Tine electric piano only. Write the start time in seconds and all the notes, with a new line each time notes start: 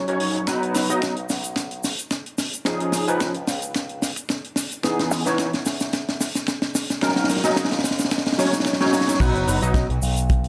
0.08 F#3 C#4 D#4 C#5
0.47 F#3 B3 D#4 B4
0.89 F#3 B3 D#4 D#5
2.65 F3 C#4 D#4 G#4
3.07 F3 C#4 D#4 B4
4.83 E3 B3 D#4 G#4
5.26 E3 B3 D#4 C#5
7.02 F#3 C#4 D#4 A#4
7.44 F#3 C#4 D#4 D#5
8.38 F#3 C#4 D#4 C#5
8.80 F#3 C#4 D#4 C#5
9.20 F#3 B3 D#4 B4
9.62 F#3 B3 D#4 D#5